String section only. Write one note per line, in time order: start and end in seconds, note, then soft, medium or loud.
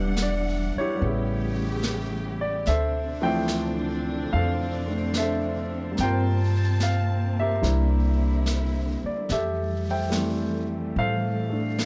0.00 0.97 E3 medium
0.00 1.00 G3 medium
0.00 0.99 D4 medium
0.00 0.99 F#5 medium
0.98 2.64 C#3 medium
0.98 2.64 E3 medium
0.98 2.63 A3 medium
0.98 2.64 G4 medium
2.66 7.59 C3 medium
2.66 5.94 D3 medium
2.66 9.25 C4 medium
2.66 5.95 D4 medium
5.98 9.26 A#3 medium
5.98 7.62 A5 medium
7.64 9.28 D3 medium
7.64 9.29 E4 medium
9.32 11.85 E3 medium
9.32 11.85 G3 medium
9.32 11.85 A3 medium